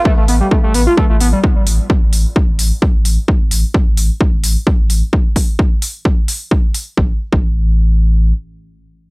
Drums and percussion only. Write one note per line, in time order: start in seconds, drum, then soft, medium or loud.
0.05 kick loud
0.28 open hi-hat loud
0.51 kick loud
0.74 open hi-hat loud
0.97 kick loud
1.21 open hi-hat loud
1.44 kick loud
1.67 open hi-hat loud
1.90 kick loud
2.13 open hi-hat loud
2.36 kick loud
2.59 open hi-hat loud
2.82 kick loud
3.05 open hi-hat loud
3.28 kick loud
3.51 open hi-hat loud
3.74 kick loud
3.97 open hi-hat loud
4.21 kick loud
4.44 open hi-hat loud
4.67 kick loud
4.90 open hi-hat loud
5.13 kick loud
5.36 kick medium
5.36 open hi-hat loud
5.59 kick loud
5.82 open hi-hat loud
6.05 kick loud
6.28 open hi-hat loud
6.51 kick loud
6.75 open hi-hat loud
6.97 kick loud
7.33 kick loud